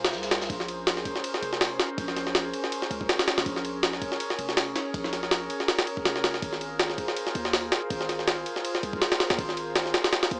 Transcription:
Already playing: 808-style bass D#1, ambient pad F4 G#4 A#4 C5
0.04 snare, ride
0.13 808-style bass C2, snare, shaker
0.22 snare, ride, shaker
0.31 snare, ride, shaker
0.41 snare, shaker
0.50 808-style bass A#1, ambient pad C#4 G#4 A#4 C5, kick, ride
0.60 snare
0.68 ride
0.87 snare, ride
0.97 snare
1.05 kick, ride
1.16 snare
1.24 ride
1.34 snare
1.42 808-style bass F1, ride
1.53 snare
1.61 snare, open hi-hat
1.79 snare, ride
1.98 808-style bass A#1, kick, ride
2.08 snare
2.16 snare, ride
2.27 snare
2.35 snare, ride
2.53 ride
2.64 snare
2.72 ride
2.82 snare
2.91 808-style bass C#2, ride
3.01 kick
3.09 snare, ride
3.19 snare, ride
3.28 snare, ride
3.38 808-style bass F1, snare, ride
3.46 808-style bass A#1, ambient pad C#5, kick, ride
3.56 snare
3.65 ride
3.83 snare, ride
3.93 snare
4.02 kick, ride
4.12 snare
4.20 ride
4.30 snare
4.39 808-style bass F1, ride
4.49 snare
4.57 snare, open hi-hat
4.76 snare, ride
4.94 808-style bass A#1, kick, ride
5.04 snare
5.13 snare, ride
5.23 snare
5.31 snare, ride
5.50 ride
5.60 snare
5.68 snare, ride
5.79 snare, ride
5.87 ride
5.97 kick
6.05 808-style bass F1, snare, ride
6.16 snare
6.24 808-style bass F1, snare, ride
6.34 snare
6.42 808-style bass G#1, ambient pad F4 C5, kick, ride
6.53 snare
6.61 ride
6.79 snare, ride
6.90 snare
6.98 kick, ride
7.08 snare
7.16 ride
7.27 snare
7.35 808-style bass D#2, ride
7.45 snare
7.53 snare, open hi-hat
7.72 snare, ride
7.90 808-style bass G#1, kick, ride
8.01 snare
8.09 snare, ride
8.19 snare
8.28 snare, ride
8.46 ride
8.56 snare
8.65 ride
8.75 snare
8.83 808-style bass C2, ride
8.93 kick
9.02 snare, ride
9.12 snare, ride
9.20 snare, ride
9.30 808-style bass D#2, snare, ride
9.39 808-style bass G#1, kick, ride
9.49 snare
9.57 ride
9.76 snare, ride
9.86 snare
9.94 snare, ride
10.04 snare, ride
10.13 snare, ride
10.23 snare, ride
10.31 808-style bass D#2, ride

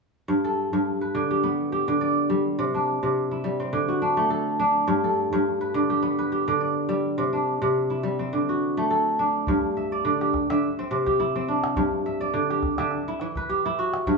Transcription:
0.28 kora G2
0.44 kora A4
0.73 kora G2
1.01 kora B4
1.15 kora D3
1.31 kora G4
1.43 kora B3
1.72 kora G4
1.88 kora D3
2.01 kora D5
2.30 kora G3
2.59 kora C3
2.74 kora D4
3.03 kora C3
3.31 kora E4
3.44 kora G3
3.60 kora C4
3.73 kora D3
3.88 kora F#4
4.02 kora D4
4.17 kora A3
4.30 kora A4
4.60 kora D4
4.88 kora G2
5.04 kora A4
5.33 kora G2
5.61 kora B4
5.74 kora D3
5.90 kora G4
6.03 kora B3
6.19 kora B4
6.32 kora G4
6.48 kora D3
6.61 kora D5
6.89 kora G3
7.18 kora C3
7.33 kora D4
7.62 kora C3
7.90 kora E4
8.03 kora G3
8.19 kora C4
8.33 kora D3
8.49 kora F#4
8.77 kora A3
8.91 kora A4
9.19 kora D4
9.47 kora G2, calabash thump
9.77 kora E5
9.92 kora D5
10.05 kora D3
10.21 kora G4, calabash click
10.34 calabash thump, calabash click
10.50 kora D3 E5, calabash click
10.63 calabash click
10.79 kora C4
10.91 kora C3, calabash click
11.06 kora G4, calabash thump, calabash click
11.20 kora E4
11.36 kora C4
11.48 kora D4
11.64 calabash click
11.76 kora G2, calabash thump
12.06 kora E5
12.21 kora D5
12.34 kora D3
12.50 kora G4, calabash click
12.63 calabash thump, calabash click
12.78 kora D3 E5, calabash click
12.91 calabash click
13.08 kora E4
13.20 kora E3, calabash click
13.36 kora B4, calabash thump, calabash click
13.49 kora G4
13.66 kora E4
13.79 kora F#4
13.94 calabash click
14.07 kora G2, calabash thump

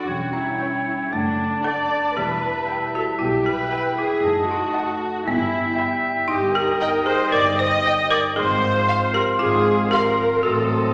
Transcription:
Already playing: marimba D4, viola section F#4
0.07 double bass section E1, cello section E2, french horn section G3 C#4, oboe C#5, flute G5
0.33 marimba C#4, viola section E4
0.58 violin section C#5 G5
1.11 double bass section F#1, cello section F#2, french horn section A3 D4, marimba A3, viola section D4, oboe D5, flute A5
1.63 marimba A4, viola section D5, violin section D5 F#5 A5
2.16 double bass section E1, cello section E2, french horn section G3 E4, marimba G4, viola section B4, oboe E5
2.68 violin section E5 G5
2.94 marimba F#4, viola section A4
3.19 double bass section B1, cello section B2, marimba E4, viola section G4, flute G5
3.45 marimba G4, viola section B4
3.71 violin section E5 G5
3.97 marimba E4, viola section G#4
4.22 double bass section F#1, cello section F#2, french horn section A3 D#4, oboe D#5, flute A5
4.49 marimba D#4, viola section F#4
4.75 violin section D#5 F#5 A5
5.26 double bass section G1, cello section G2, french horn section G3 E4, marimba B3, viola section E4, oboe E5, flute G5
5.77 violin section E5 G5 B5
6.28 double bass section G1, cello section G2, marimba D#4, french horn section D#4, viola section G4, oboe D#5
6.55 marimba G4, viola section A#4
6.80 violin section D#5 G5
7.06 marimba G#4, viola section C5
7.32 double bass section G1, cello section G2, marimba A#4, viola section D5
7.58 marimba C5, viola section D#5
7.85 violin section D#5 G5
8.10 marimba A#4, viola section D5
8.35 double bass section G#1, cello section G#2, french horn section F3 C4, marimba G#4, viola section C5, oboe F5, flute C6
8.88 violin section F5 C6
9.14 marimba G4, viola section A#4
9.39 double bass section G#1, cello section G#2, marimba F4, viola section G#4
9.91 marimba G4, viola section A#4, violin section F5 C6
10.43 double bass section A1, cello section A2, french horn section F#3, marimba F#4, viola section A4, oboe D#5

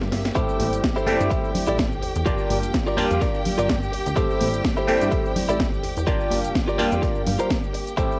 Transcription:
Already playing: clav G3 A#3 D4 F4 G4, violin section G4 E5
0.01 analog synth bass G2, snare
0.12 analog synth bass G1, muted clean electric guitar stroke, snare, open hi-hat
0.25 snare, closed hi-hat
0.35 analog synth bass A1, clav G3 A3 C4 E4 G4, clean electric guitar E4 G4 A4 C5, violin section G4 G5, kick, closed hi-hat, maracas
0.49 maracas
0.60 analog synth bass A1, open hi-hat, high conga
0.73 analog synth bass G1, closed hi-hat, maracas
0.84 kick, snare, closed hi-hat, maracas
0.96 clean electric guitar E4 G4 A4 C5, maracas
1.07 analog synth bass G2, clav G3 A3 C4 E4 G4, open hi-hat, high conga
1.20 analog synth bass G2, closed hi-hat, maracas
1.30 clean electric guitar E4 G4 A4 C5, kick, closed hi-hat, maracas
1.45 maracas
1.55 open hi-hat, low conga
1.66 analog synth bass A1, clean electric guitar E4 G4 A4 D5, closed hi-hat, maracas
1.78 kick, snare, closed hi-hat, maracas
1.92 maracas
2.02 analog synth bass E2, muted clean electric guitar stroke, open hi-hat
2.15 analog synth bass E2, closed hi-hat, maracas
2.26 analog synth bass G1, clav G3 A#3 D4 F4 G4, clean electric guitar F4 G4 A#4 D5, kick, closed hi-hat, maracas
2.38 maracas
2.50 analog synth bass G1, open hi-hat, high conga
2.63 analog synth bass F1, closed hi-hat, maracas
2.74 kick, snare, closed hi-hat, maracas
2.87 clean electric guitar F4 G4 A#4 D5, maracas
2.97 analog synth bass F2, clav G3 A#3 D4 F4 G4, open hi-hat, high conga
3.11 analog synth bass F2, closed hi-hat, maracas
3.21 clean electric guitar F4 G4 A#4 D5, kick, snare, closed hi-hat, maracas
3.34 maracas
3.45 open hi-hat, low conga
3.58 analog synth bass G1, clean electric guitar F4 G4 A#4 D5, closed hi-hat, maracas
3.69 kick, snare, closed hi-hat, maracas
3.83 maracas
3.92 analog synth bass D2, muted clean electric guitar stroke, open hi-hat
4.06 analog synth bass D2, closed hi-hat, maracas
4.16 analog synth bass A1, clav G3 A3 C4 E4 G4, clean electric guitar E4 G4 A4 C5, kick, closed hi-hat, maracas
4.30 maracas
4.41 analog synth bass A1, open hi-hat, high conga
4.54 analog synth bass G1, closed hi-hat, maracas
4.64 kick, snare, closed hi-hat, maracas
4.77 clean electric guitar E4 G4 A4 C5, maracas
4.87 analog synth bass G2, clav G3 A3 C4 E4 G4, open hi-hat, high conga
5.01 analog synth bass G2, closed hi-hat, maracas
5.12 clean electric guitar E4 G4 A4 C5, kick, closed hi-hat, maracas
5.25 maracas
5.36 open hi-hat, low conga
5.49 analog synth bass A1, clean electric guitar E4 G4 A4 D5, closed hi-hat, maracas
5.60 kick, snare, closed hi-hat, maracas
5.73 maracas
5.83 analog synth bass E2, muted clean electric guitar stroke, open hi-hat
5.97 analog synth bass E2, closed hi-hat, maracas
6.07 analog synth bass G1, clav G3 A#3 D4 F4 G4, clean electric guitar F4 G4 A#4 D5, kick, closed hi-hat, maracas
6.20 maracas
6.31 analog synth bass G1, open hi-hat, high conga
6.44 analog synth bass F1, closed hi-hat, maracas
6.55 kick, snare, closed hi-hat, maracas
6.67 clean electric guitar F4 G4 A#4 D5, maracas
6.78 analog synth bass F2, clav G3 A#3 D4 F4 G4, open hi-hat, high conga
6.92 analog synth bass F2, closed hi-hat, maracas
7.02 clean electric guitar F4 G4 A#4 D5, kick, snare, closed hi-hat, maracas
7.15 analog synth bass G2, maracas
7.26 analog synth bass G2, open hi-hat, low conga
7.39 clean electric guitar F4 G4 A#4 C5, closed hi-hat, maracas
7.50 kick, snare, closed hi-hat, maracas
7.63 maracas
7.73 muted clean electric guitar stroke, open hi-hat
7.87 closed hi-hat, maracas
7.97 analog synth bass A1, clav G3 A3 C4 E4 G4, clean electric guitar E4 G4 A4 C5, violin section G4 G5, kick, closed hi-hat, maracas
8.12 maracas

